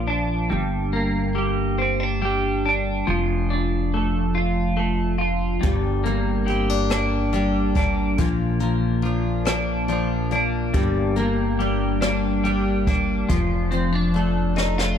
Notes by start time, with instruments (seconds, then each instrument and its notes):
Already playing: upright bass A#1, clean electric guitar A#2 F3 A#3
0.08 clean electric guitar D4
0.50 upright bass G1, clean electric guitar G2
0.93 clean electric guitar A#3
1.35 clean electric guitar G3
1.78 clean electric guitar C4
2.00 clean electric guitar D4
2.22 clean electric guitar G3
2.66 clean electric guitar D4
3.07 upright bass F1, clean electric guitar F3
3.50 clean electric guitar D4
3.94 clean electric guitar A3
4.35 clean electric guitar F4
4.77 clean electric guitar A3
5.18 clean electric guitar F4
5.61 upright bass G1, clean electric guitar G2, steel-string acoustic guitar G3, kick, closed hi-hat
6.04 steel-string acoustic guitar G3, clean electric guitar A#3, closed hi-hat
6.46 clean electric guitar G3, steel-string acoustic guitar C4, closed hi-hat
6.70 steel-string acoustic guitar D4
6.90 steel-string acoustic guitar A#3, clean electric guitar D4, cross-stick, closed hi-hat
7.33 clean electric guitar G3, steel-string acoustic guitar D4, closed hi-hat
7.75 steel-string acoustic guitar A#3, clean electric guitar D4, kick, closed hi-hat
8.18 upright bass A#1, clean electric guitar A#2, steel-string acoustic guitar F3, kick, closed hi-hat
8.60 steel-string acoustic guitar F3, clean electric guitar A#3, closed hi-hat
9.02 clean electric guitar F3, steel-string acoustic guitar D4, closed hi-hat
9.45 steel-string acoustic guitar A#3, clean electric guitar D4, cross-stick, closed hi-hat
9.88 clean electric guitar F3, steel-string acoustic guitar D4, closed hi-hat
10.31 steel-string acoustic guitar A#3, clean electric guitar D4, closed hi-hat
10.74 upright bass G1, clean electric guitar G2, steel-string acoustic guitar G3, kick, closed hi-hat
11.16 steel-string acoustic guitar G3, clean electric guitar A#3, closed hi-hat
11.59 clean electric guitar G3, steel-string acoustic guitar D4, closed hi-hat
12.01 steel-string acoustic guitar A#3, clean electric guitar D4, cross-stick, closed hi-hat
12.44 clean electric guitar G3, steel-string acoustic guitar D4, closed hi-hat
12.87 steel-string acoustic guitar A#3, clean electric guitar D4, kick, closed hi-hat
13.29 upright bass F1, clean electric guitar F3, steel-string acoustic guitar F3, kick, closed hi-hat
13.71 steel-string acoustic guitar F3, clean electric guitar C4, closed hi-hat
13.93 clean electric guitar D4
14.14 clean electric guitar A3, steel-string acoustic guitar D4, closed hi-hat
14.56 steel-string acoustic guitar A3, clean electric guitar D#4, snare
14.78 clean electric guitar F4, snare